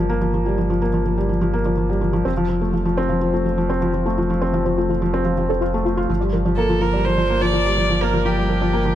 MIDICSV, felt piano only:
0, 0, Header, 1, 2, 480
1, 0, Start_track
1, 0, Key_signature, -2, "minor"
1, 0, Tempo, 480000
1, 332, Time_signature, 4, 2, 24, 8
1, 8950, End_track
2, 0, Start_track
2, 0, Title_t, "Felt piano"
2, 0, Program_c, 0, 0
2, 0, Control_c, 0, 64, 127
2, 0, Note_on_c, 0, 53, 82
2, 0, Note_on_c, 0, 55, 54
2, 0, Note_on_c, 0, 58, 78
2, 94, Note_off_c, 0, 58, 0
2, 94, Note_on_c, 0, 58, 83
2, 162, Note_off_c, 0, 58, 0
2, 214, Note_off_c, 0, 53, 0
2, 214, Note_on_c, 0, 53, 77
2, 281, Note_off_c, 0, 53, 0
2, 338, Note_on_c, 0, 53, 58
2, 449, Note_off_c, 0, 53, 0
2, 459, Note_off_c, 0, 55, 0
2, 459, Note_on_c, 0, 55, 59
2, 569, Note_off_c, 0, 55, 0
2, 579, Note_on_c, 0, 53, 61
2, 684, Note_off_c, 0, 53, 0
2, 699, Note_on_c, 0, 53, 74
2, 810, Note_off_c, 0, 53, 0
2, 815, Note_on_c, 0, 58, 77
2, 882, Note_off_c, 0, 58, 0
2, 937, Note_on_c, 0, 53, 74
2, 1003, Note_off_c, 0, 53, 0
2, 1056, Note_on_c, 0, 53, 62
2, 1168, Note_off_c, 0, 53, 0
2, 1175, Note_on_c, 0, 55, 61
2, 1287, Note_off_c, 0, 55, 0
2, 1292, Note_on_c, 0, 53, 62
2, 1398, Note_off_c, 0, 53, 0
2, 1413, Note_on_c, 0, 53, 79
2, 1527, Note_off_c, 0, 53, 0
2, 1534, Note_on_c, 0, 58, 76
2, 1601, Note_off_c, 0, 58, 0
2, 1654, Note_on_c, 0, 53, 72
2, 1721, Note_off_c, 0, 53, 0
2, 1772, Note_on_c, 0, 53, 62
2, 1886, Note_off_c, 0, 53, 0
2, 1894, Note_on_c, 0, 55, 64
2, 2007, Note_off_c, 0, 55, 0
2, 2011, Note_on_c, 0, 53, 61
2, 2116, Note_off_c, 0, 53, 0
2, 2131, Note_on_c, 0, 53, 80
2, 2245, Note_off_c, 0, 53, 0
2, 2251, Note_on_c, 0, 60, 75
2, 2267, Control_c, 0, 64, 0
2, 2320, Note_off_c, 0, 60, 0
2, 2371, Note_on_c, 0, 53, 85
2, 2438, Control_c, 0, 64, 127
2, 2440, Note_off_c, 0, 53, 0
2, 2491, Note_on_c, 0, 53, 61
2, 2606, Note_off_c, 0, 53, 0
2, 2613, Note_on_c, 0, 57, 53
2, 2726, Note_off_c, 0, 57, 0
2, 2733, Note_on_c, 0, 53, 62
2, 2839, Note_off_c, 0, 53, 0
2, 2854, Note_on_c, 0, 53, 76
2, 2967, Note_off_c, 0, 53, 0
2, 2975, Note_on_c, 0, 60, 80
2, 3042, Note_off_c, 0, 60, 0
2, 3094, Note_on_c, 0, 53, 73
2, 3161, Note_off_c, 0, 53, 0
2, 3214, Note_on_c, 0, 53, 63
2, 3327, Note_off_c, 0, 53, 0
2, 3336, Note_on_c, 0, 57, 57
2, 3448, Note_off_c, 0, 57, 0
2, 3456, Note_on_c, 0, 53, 60
2, 3562, Note_off_c, 0, 53, 0
2, 3577, Note_on_c, 0, 53, 76
2, 3688, Note_off_c, 0, 53, 0
2, 3696, Note_on_c, 0, 60, 77
2, 3762, Note_off_c, 0, 60, 0
2, 3818, Note_on_c, 0, 53, 82
2, 3883, Note_off_c, 0, 53, 0
2, 3936, Note_on_c, 0, 53, 60
2, 4048, Note_off_c, 0, 53, 0
2, 4059, Note_on_c, 0, 57, 59
2, 4170, Note_off_c, 0, 57, 0
2, 4178, Note_on_c, 0, 53, 63
2, 4284, Note_off_c, 0, 53, 0
2, 4299, Note_on_c, 0, 53, 79
2, 4409, Note_off_c, 0, 53, 0
2, 4416, Note_on_c, 0, 60, 79
2, 4482, Note_off_c, 0, 60, 0
2, 4537, Note_on_c, 0, 53, 68
2, 4603, Note_off_c, 0, 53, 0
2, 4657, Note_on_c, 0, 53, 63
2, 4769, Note_off_c, 0, 53, 0
2, 4781, Note_on_c, 0, 57, 56
2, 4890, Note_off_c, 0, 57, 0
2, 4901, Note_on_c, 0, 53, 60
2, 5002, Note_off_c, 0, 53, 0
2, 5017, Note_on_c, 0, 53, 82
2, 5129, Note_off_c, 0, 53, 0
2, 5136, Note_on_c, 0, 60, 78
2, 5203, Note_off_c, 0, 60, 0
2, 5259, Note_on_c, 0, 53, 77
2, 5324, Note_off_c, 0, 53, 0
2, 5377, Note_on_c, 0, 53, 58
2, 5488, Note_off_c, 0, 53, 0
2, 5501, Note_on_c, 0, 60, 57
2, 5610, Note_off_c, 0, 60, 0
2, 5618, Note_on_c, 0, 65, 63
2, 5729, Note_off_c, 0, 65, 0
2, 5740, Note_on_c, 0, 57, 62
2, 5844, Note_off_c, 0, 57, 0
2, 5859, Note_on_c, 0, 57, 57
2, 5970, Note_off_c, 0, 57, 0
2, 5974, Note_on_c, 0, 65, 78
2, 6087, Note_off_c, 0, 65, 0
2, 6096, Note_on_c, 0, 53, 63
2, 6105, Control_c, 0, 64, 0
2, 6208, Note_off_c, 0, 53, 0
2, 6216, Note_on_c, 0, 55, 58
2, 6271, Control_c, 0, 64, 127
2, 6328, Note_off_c, 0, 55, 0
2, 6338, Note_on_c, 0, 53, 57
2, 6440, Note_off_c, 0, 53, 0
2, 6455, Note_on_c, 0, 53, 72
2, 6567, Note_off_c, 0, 53, 0
2, 6576, Note_on_c, 0, 58, 78
2, 6642, Note_off_c, 0, 58, 0
2, 6696, Note_on_c, 0, 53, 76
2, 6762, Note_off_c, 0, 53, 0
2, 6816, Note_on_c, 0, 53, 65
2, 6928, Note_off_c, 0, 53, 0
2, 6940, Note_on_c, 0, 55, 62
2, 7050, Note_off_c, 0, 55, 0
2, 7055, Note_on_c, 0, 53, 65
2, 7164, Note_off_c, 0, 53, 0
2, 7179, Note_on_c, 0, 53, 76
2, 7289, Note_off_c, 0, 53, 0
2, 7298, Note_on_c, 0, 58, 80
2, 7363, Note_off_c, 0, 58, 0
2, 7419, Note_on_c, 0, 53, 74
2, 7484, Note_off_c, 0, 53, 0
2, 7536, Note_on_c, 0, 53, 66
2, 7648, Note_off_c, 0, 53, 0
2, 7654, Note_on_c, 0, 55, 64
2, 7767, Note_off_c, 0, 55, 0
2, 7776, Note_on_c, 0, 53, 61
2, 7880, Note_off_c, 0, 53, 0
2, 7895, Note_on_c, 0, 53, 80
2, 8007, Note_off_c, 0, 53, 0
2, 8015, Note_on_c, 0, 58, 81
2, 8082, Note_off_c, 0, 58, 0
2, 8133, Note_on_c, 0, 53, 81
2, 8201, Note_off_c, 0, 53, 0
2, 8253, Note_on_c, 0, 53, 64
2, 8366, Note_off_c, 0, 53, 0
2, 8374, Note_on_c, 0, 55, 60
2, 8487, Note_off_c, 0, 55, 0
2, 8494, Note_on_c, 0, 53, 61
2, 8599, Note_off_c, 0, 53, 0
2, 8614, Note_on_c, 0, 53, 79
2, 8727, Note_off_c, 0, 53, 0
2, 8734, Note_on_c, 0, 58, 83
2, 8801, Note_off_c, 0, 58, 0
2, 8853, Note_on_c, 0, 53, 80
2, 8921, Note_off_c, 0, 53, 0
2, 8950, End_track
0, 0, End_of_file